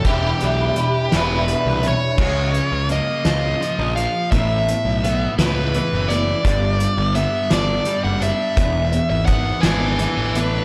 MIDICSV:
0, 0, Header, 1, 6, 480
1, 0, Start_track
1, 0, Tempo, 710900
1, 28, Time_signature, 6, 3, 24, 8
1, 7189, End_track
2, 0, Start_track
2, 0, Title_t, "Lead electric guitar"
2, 0, Program_c, 0, 29
2, 43, Note_on_c, 0, 67, 77
2, 787, Note_on_c, 0, 71, 71
2, 971, Note_off_c, 0, 67, 0
2, 1263, Note_off_c, 0, 71, 0
2, 1267, Note_on_c, 0, 73, 69
2, 1943, Note_off_c, 0, 73, 0
2, 1971, Note_on_c, 0, 75, 75
2, 2671, Note_off_c, 0, 75, 0
2, 2673, Note_on_c, 0, 77, 76
2, 2907, Note_off_c, 0, 77, 0
2, 2910, Note_on_c, 0, 76, 95
2, 3606, Note_off_c, 0, 76, 0
2, 3638, Note_on_c, 0, 71, 87
2, 4108, Note_on_c, 0, 74, 86
2, 4131, Note_off_c, 0, 71, 0
2, 4829, Note_off_c, 0, 74, 0
2, 4832, Note_on_c, 0, 76, 92
2, 5081, Note_off_c, 0, 76, 0
2, 5084, Note_on_c, 0, 74, 83
2, 5427, Note_off_c, 0, 74, 0
2, 5430, Note_on_c, 0, 78, 89
2, 5553, Note_off_c, 0, 78, 0
2, 5556, Note_on_c, 0, 76, 103
2, 6137, Note_off_c, 0, 76, 0
2, 6145, Note_on_c, 0, 76, 101
2, 6246, Note_off_c, 0, 76, 0
2, 6249, Note_on_c, 0, 78, 101
2, 6483, Note_off_c, 0, 78, 0
2, 6486, Note_on_c, 0, 71, 84
2, 6491, Note_on_c, 0, 80, 88
2, 7013, Note_off_c, 0, 80, 0
2, 7189, Note_off_c, 0, 71, 0
2, 7189, End_track
3, 0, Start_track
3, 0, Title_t, "Clean electric guitar"
3, 0, Program_c, 1, 27
3, 35, Note_on_c, 1, 55, 75
3, 42, Note_on_c, 1, 62, 78
3, 45, Note_on_c, 1, 64, 85
3, 45, Note_on_c, 1, 71, 77
3, 269, Note_off_c, 1, 71, 0
3, 272, Note_off_c, 1, 55, 0
3, 275, Note_off_c, 1, 64, 0
3, 276, Note_off_c, 1, 62, 0
3, 277, Note_on_c, 1, 71, 72
3, 283, Note_on_c, 1, 64, 71
3, 285, Note_on_c, 1, 55, 53
3, 285, Note_on_c, 1, 62, 60
3, 504, Note_off_c, 1, 55, 0
3, 505, Note_off_c, 1, 62, 0
3, 510, Note_off_c, 1, 64, 0
3, 511, Note_off_c, 1, 71, 0
3, 512, Note_on_c, 1, 55, 62
3, 513, Note_on_c, 1, 62, 67
3, 518, Note_on_c, 1, 64, 74
3, 520, Note_on_c, 1, 71, 74
3, 742, Note_off_c, 1, 64, 0
3, 743, Note_off_c, 1, 71, 0
3, 748, Note_off_c, 1, 55, 0
3, 750, Note_on_c, 1, 64, 66
3, 751, Note_on_c, 1, 71, 68
3, 752, Note_off_c, 1, 62, 0
3, 756, Note_on_c, 1, 55, 54
3, 760, Note_on_c, 1, 62, 54
3, 981, Note_off_c, 1, 55, 0
3, 984, Note_off_c, 1, 62, 0
3, 989, Note_on_c, 1, 55, 69
3, 990, Note_off_c, 1, 64, 0
3, 991, Note_off_c, 1, 71, 0
3, 992, Note_on_c, 1, 62, 69
3, 999, Note_on_c, 1, 64, 73
3, 1002, Note_on_c, 1, 71, 76
3, 1220, Note_off_c, 1, 62, 0
3, 1220, Note_off_c, 1, 71, 0
3, 1222, Note_off_c, 1, 64, 0
3, 1227, Note_off_c, 1, 55, 0
3, 1228, Note_on_c, 1, 62, 73
3, 1228, Note_on_c, 1, 71, 64
3, 1230, Note_on_c, 1, 64, 70
3, 1235, Note_on_c, 1, 55, 55
3, 1470, Note_off_c, 1, 62, 0
3, 1470, Note_off_c, 1, 71, 0
3, 1471, Note_off_c, 1, 64, 0
3, 1474, Note_off_c, 1, 55, 0
3, 1478, Note_on_c, 1, 53, 84
3, 1480, Note_on_c, 1, 49, 77
3, 1486, Note_on_c, 1, 56, 87
3, 1701, Note_off_c, 1, 53, 0
3, 1702, Note_off_c, 1, 49, 0
3, 1705, Note_off_c, 1, 56, 0
3, 1715, Note_on_c, 1, 49, 59
3, 1715, Note_on_c, 1, 53, 73
3, 1930, Note_off_c, 1, 49, 0
3, 1930, Note_off_c, 1, 53, 0
3, 1955, Note_on_c, 1, 49, 67
3, 1961, Note_on_c, 1, 53, 75
3, 2170, Note_off_c, 1, 49, 0
3, 2173, Note_off_c, 1, 53, 0
3, 2190, Note_on_c, 1, 49, 57
3, 2197, Note_on_c, 1, 53, 67
3, 2408, Note_off_c, 1, 49, 0
3, 2411, Note_off_c, 1, 53, 0
3, 2434, Note_on_c, 1, 49, 74
3, 2439, Note_on_c, 1, 53, 77
3, 2650, Note_off_c, 1, 49, 0
3, 2652, Note_off_c, 1, 53, 0
3, 2680, Note_on_c, 1, 49, 68
3, 2682, Note_on_c, 1, 53, 74
3, 2893, Note_off_c, 1, 49, 0
3, 2894, Note_off_c, 1, 53, 0
3, 2920, Note_on_c, 1, 57, 72
3, 2922, Note_on_c, 1, 59, 84
3, 2924, Note_on_c, 1, 64, 83
3, 3143, Note_off_c, 1, 57, 0
3, 3144, Note_off_c, 1, 59, 0
3, 3145, Note_off_c, 1, 64, 0
3, 3159, Note_on_c, 1, 59, 76
3, 3160, Note_on_c, 1, 57, 69
3, 3373, Note_off_c, 1, 57, 0
3, 3373, Note_off_c, 1, 59, 0
3, 3404, Note_on_c, 1, 57, 69
3, 3406, Note_on_c, 1, 59, 74
3, 3615, Note_off_c, 1, 57, 0
3, 3616, Note_off_c, 1, 59, 0
3, 3643, Note_on_c, 1, 57, 62
3, 3645, Note_on_c, 1, 59, 72
3, 3855, Note_off_c, 1, 57, 0
3, 3856, Note_off_c, 1, 59, 0
3, 3885, Note_on_c, 1, 57, 71
3, 3888, Note_on_c, 1, 59, 88
3, 4096, Note_off_c, 1, 57, 0
3, 4097, Note_off_c, 1, 59, 0
3, 4123, Note_on_c, 1, 57, 62
3, 4125, Note_on_c, 1, 59, 69
3, 4335, Note_off_c, 1, 57, 0
3, 4336, Note_off_c, 1, 59, 0
3, 4357, Note_on_c, 1, 55, 86
3, 4361, Note_on_c, 1, 59, 88
3, 4364, Note_on_c, 1, 62, 81
3, 4581, Note_off_c, 1, 55, 0
3, 4584, Note_off_c, 1, 59, 0
3, 4585, Note_off_c, 1, 62, 0
3, 4594, Note_on_c, 1, 55, 61
3, 4595, Note_on_c, 1, 59, 77
3, 4810, Note_off_c, 1, 55, 0
3, 4811, Note_off_c, 1, 59, 0
3, 4833, Note_on_c, 1, 55, 67
3, 4837, Note_on_c, 1, 59, 81
3, 5050, Note_off_c, 1, 55, 0
3, 5052, Note_off_c, 1, 59, 0
3, 5068, Note_on_c, 1, 55, 63
3, 5069, Note_on_c, 1, 59, 69
3, 5287, Note_off_c, 1, 55, 0
3, 5288, Note_off_c, 1, 59, 0
3, 5310, Note_on_c, 1, 55, 76
3, 5317, Note_on_c, 1, 59, 77
3, 5528, Note_off_c, 1, 55, 0
3, 5532, Note_off_c, 1, 59, 0
3, 5554, Note_on_c, 1, 55, 69
3, 5556, Note_on_c, 1, 59, 70
3, 5770, Note_off_c, 1, 55, 0
3, 5771, Note_off_c, 1, 59, 0
3, 5790, Note_on_c, 1, 52, 80
3, 5795, Note_on_c, 1, 59, 87
3, 5798, Note_on_c, 1, 62, 94
3, 6018, Note_off_c, 1, 52, 0
3, 6020, Note_off_c, 1, 59, 0
3, 6022, Note_off_c, 1, 62, 0
3, 6029, Note_on_c, 1, 52, 67
3, 6035, Note_on_c, 1, 59, 80
3, 6247, Note_off_c, 1, 52, 0
3, 6250, Note_off_c, 1, 59, 0
3, 6268, Note_on_c, 1, 52, 71
3, 6271, Note_on_c, 1, 59, 90
3, 6486, Note_off_c, 1, 52, 0
3, 6488, Note_off_c, 1, 59, 0
3, 6508, Note_on_c, 1, 52, 66
3, 6514, Note_on_c, 1, 59, 79
3, 6726, Note_off_c, 1, 52, 0
3, 6729, Note_off_c, 1, 59, 0
3, 6744, Note_on_c, 1, 52, 74
3, 6751, Note_on_c, 1, 59, 83
3, 6964, Note_off_c, 1, 52, 0
3, 6968, Note_off_c, 1, 59, 0
3, 6993, Note_on_c, 1, 52, 64
3, 6994, Note_on_c, 1, 59, 82
3, 7189, Note_off_c, 1, 52, 0
3, 7189, Note_off_c, 1, 59, 0
3, 7189, End_track
4, 0, Start_track
4, 0, Title_t, "Overdriven electric guitar"
4, 0, Program_c, 2, 29
4, 26, Note_on_c, 2, 40, 79
4, 30, Note_on_c, 2, 47, 90
4, 36, Note_on_c, 2, 52, 89
4, 494, Note_off_c, 2, 40, 0
4, 496, Note_off_c, 2, 47, 0
4, 499, Note_off_c, 2, 52, 0
4, 516, Note_on_c, 2, 40, 63
4, 522, Note_on_c, 2, 47, 73
4, 729, Note_off_c, 2, 40, 0
4, 732, Note_off_c, 2, 47, 0
4, 755, Note_on_c, 2, 40, 86
4, 758, Note_on_c, 2, 47, 79
4, 766, Note_on_c, 2, 52, 89
4, 1219, Note_off_c, 2, 40, 0
4, 1221, Note_off_c, 2, 47, 0
4, 1225, Note_off_c, 2, 52, 0
4, 1235, Note_on_c, 2, 40, 61
4, 1242, Note_on_c, 2, 47, 64
4, 1450, Note_off_c, 2, 40, 0
4, 1453, Note_off_c, 2, 47, 0
4, 1475, Note_on_c, 2, 49, 70
4, 1954, Note_on_c, 2, 58, 57
4, 2198, Note_on_c, 2, 65, 69
4, 2437, Note_on_c, 2, 53, 65
4, 2669, Note_off_c, 2, 65, 0
4, 2675, Note_off_c, 2, 49, 0
4, 2677, Note_on_c, 2, 65, 58
4, 2914, Note_off_c, 2, 58, 0
4, 2916, Note_off_c, 2, 53, 0
4, 2916, Note_off_c, 2, 65, 0
4, 2922, Note_on_c, 2, 45, 63
4, 3399, Note_on_c, 2, 59, 60
4, 3632, Note_on_c, 2, 64, 69
4, 3884, Note_on_c, 2, 52, 69
4, 4099, Note_off_c, 2, 64, 0
4, 4107, Note_on_c, 2, 64, 66
4, 4119, Note_off_c, 2, 45, 0
4, 4346, Note_on_c, 2, 43, 74
4, 4351, Note_off_c, 2, 64, 0
4, 4359, Note_off_c, 2, 52, 0
4, 4826, Note_off_c, 2, 59, 0
4, 4829, Note_on_c, 2, 59, 66
4, 5063, Note_on_c, 2, 62, 73
4, 5310, Note_on_c, 2, 55, 65
4, 5532, Note_off_c, 2, 62, 0
4, 5540, Note_on_c, 2, 62, 67
4, 5550, Note_off_c, 2, 43, 0
4, 5779, Note_on_c, 2, 40, 68
4, 5787, Note_off_c, 2, 62, 0
4, 5791, Note_off_c, 2, 59, 0
4, 5792, Note_off_c, 2, 55, 0
4, 6261, Note_on_c, 2, 59, 67
4, 6511, Note_on_c, 2, 62, 73
4, 6759, Note_on_c, 2, 52, 67
4, 6985, Note_off_c, 2, 40, 0
4, 6986, Note_off_c, 2, 62, 0
4, 6994, Note_on_c, 2, 62, 66
4, 7189, Note_off_c, 2, 52, 0
4, 7189, Note_off_c, 2, 59, 0
4, 7189, Note_off_c, 2, 62, 0
4, 7189, End_track
5, 0, Start_track
5, 0, Title_t, "Picked electric bass"
5, 0, Program_c, 3, 34
5, 33, Note_on_c, 3, 28, 111
5, 217, Note_off_c, 3, 28, 0
5, 288, Note_on_c, 3, 35, 76
5, 467, Note_off_c, 3, 35, 0
5, 767, Note_on_c, 3, 28, 87
5, 1039, Note_off_c, 3, 28, 0
5, 1118, Note_on_c, 3, 36, 79
5, 1301, Note_off_c, 3, 36, 0
5, 1473, Note_on_c, 3, 37, 89
5, 1751, Note_off_c, 3, 37, 0
5, 1835, Note_on_c, 3, 37, 87
5, 2020, Note_off_c, 3, 37, 0
5, 2200, Note_on_c, 3, 37, 93
5, 2383, Note_off_c, 3, 37, 0
5, 2557, Note_on_c, 3, 34, 88
5, 2741, Note_off_c, 3, 34, 0
5, 2916, Note_on_c, 3, 33, 106
5, 3194, Note_off_c, 3, 33, 0
5, 3273, Note_on_c, 3, 35, 81
5, 3552, Note_off_c, 3, 35, 0
5, 3634, Note_on_c, 3, 37, 92
5, 3913, Note_off_c, 3, 37, 0
5, 4004, Note_on_c, 3, 30, 81
5, 4279, Note_off_c, 3, 30, 0
5, 4354, Note_on_c, 3, 31, 95
5, 4632, Note_off_c, 3, 31, 0
5, 4708, Note_on_c, 3, 31, 82
5, 4896, Note_off_c, 3, 31, 0
5, 5069, Note_on_c, 3, 31, 99
5, 5257, Note_off_c, 3, 31, 0
5, 5430, Note_on_c, 3, 30, 88
5, 5617, Note_off_c, 3, 30, 0
5, 5788, Note_on_c, 3, 28, 108
5, 6068, Note_off_c, 3, 28, 0
5, 6147, Note_on_c, 3, 32, 76
5, 6427, Note_off_c, 3, 32, 0
5, 6508, Note_on_c, 3, 32, 100
5, 6788, Note_off_c, 3, 32, 0
5, 6869, Note_on_c, 3, 33, 86
5, 7148, Note_off_c, 3, 33, 0
5, 7189, End_track
6, 0, Start_track
6, 0, Title_t, "Drums"
6, 31, Note_on_c, 9, 42, 71
6, 33, Note_on_c, 9, 36, 94
6, 99, Note_off_c, 9, 42, 0
6, 100, Note_off_c, 9, 36, 0
6, 272, Note_on_c, 9, 42, 57
6, 340, Note_off_c, 9, 42, 0
6, 512, Note_on_c, 9, 42, 61
6, 580, Note_off_c, 9, 42, 0
6, 757, Note_on_c, 9, 38, 104
6, 757, Note_on_c, 9, 42, 82
6, 824, Note_off_c, 9, 38, 0
6, 824, Note_off_c, 9, 42, 0
6, 999, Note_on_c, 9, 42, 59
6, 1066, Note_off_c, 9, 42, 0
6, 1234, Note_on_c, 9, 42, 62
6, 1302, Note_off_c, 9, 42, 0
6, 1473, Note_on_c, 9, 36, 100
6, 1475, Note_on_c, 9, 49, 97
6, 1541, Note_off_c, 9, 36, 0
6, 1542, Note_off_c, 9, 49, 0
6, 1716, Note_on_c, 9, 42, 58
6, 1784, Note_off_c, 9, 42, 0
6, 1951, Note_on_c, 9, 42, 64
6, 2018, Note_off_c, 9, 42, 0
6, 2194, Note_on_c, 9, 38, 111
6, 2194, Note_on_c, 9, 42, 84
6, 2261, Note_off_c, 9, 38, 0
6, 2261, Note_off_c, 9, 42, 0
6, 2447, Note_on_c, 9, 42, 58
6, 2514, Note_off_c, 9, 42, 0
6, 2681, Note_on_c, 9, 42, 62
6, 2749, Note_off_c, 9, 42, 0
6, 2917, Note_on_c, 9, 36, 97
6, 2918, Note_on_c, 9, 42, 84
6, 2984, Note_off_c, 9, 36, 0
6, 2986, Note_off_c, 9, 42, 0
6, 3162, Note_on_c, 9, 42, 66
6, 3229, Note_off_c, 9, 42, 0
6, 3405, Note_on_c, 9, 42, 64
6, 3472, Note_off_c, 9, 42, 0
6, 3637, Note_on_c, 9, 38, 115
6, 3637, Note_on_c, 9, 42, 93
6, 3705, Note_off_c, 9, 38, 0
6, 3705, Note_off_c, 9, 42, 0
6, 3877, Note_on_c, 9, 42, 68
6, 3945, Note_off_c, 9, 42, 0
6, 4118, Note_on_c, 9, 42, 75
6, 4186, Note_off_c, 9, 42, 0
6, 4354, Note_on_c, 9, 36, 105
6, 4358, Note_on_c, 9, 42, 85
6, 4421, Note_off_c, 9, 36, 0
6, 4426, Note_off_c, 9, 42, 0
6, 4592, Note_on_c, 9, 42, 68
6, 4659, Note_off_c, 9, 42, 0
6, 4827, Note_on_c, 9, 42, 76
6, 4894, Note_off_c, 9, 42, 0
6, 5068, Note_on_c, 9, 38, 122
6, 5068, Note_on_c, 9, 42, 99
6, 5135, Note_off_c, 9, 38, 0
6, 5135, Note_off_c, 9, 42, 0
6, 5301, Note_on_c, 9, 42, 69
6, 5369, Note_off_c, 9, 42, 0
6, 5547, Note_on_c, 9, 42, 66
6, 5615, Note_off_c, 9, 42, 0
6, 5786, Note_on_c, 9, 42, 83
6, 5787, Note_on_c, 9, 36, 102
6, 5853, Note_off_c, 9, 42, 0
6, 5855, Note_off_c, 9, 36, 0
6, 6026, Note_on_c, 9, 42, 56
6, 6094, Note_off_c, 9, 42, 0
6, 6260, Note_on_c, 9, 42, 72
6, 6265, Note_on_c, 9, 36, 82
6, 6328, Note_off_c, 9, 42, 0
6, 6333, Note_off_c, 9, 36, 0
6, 6502, Note_on_c, 9, 38, 112
6, 6502, Note_on_c, 9, 42, 91
6, 6570, Note_off_c, 9, 38, 0
6, 6570, Note_off_c, 9, 42, 0
6, 6744, Note_on_c, 9, 42, 65
6, 6812, Note_off_c, 9, 42, 0
6, 6990, Note_on_c, 9, 42, 70
6, 7057, Note_off_c, 9, 42, 0
6, 7189, End_track
0, 0, End_of_file